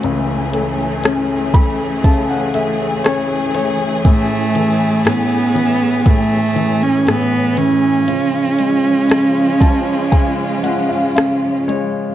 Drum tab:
HH |xxxxxxxx|xxxxxxxx|xxxxxxxx|
SD |--r---r-|--r---r-|--r---r-|
BD |---oo---|o---o---|---oo---|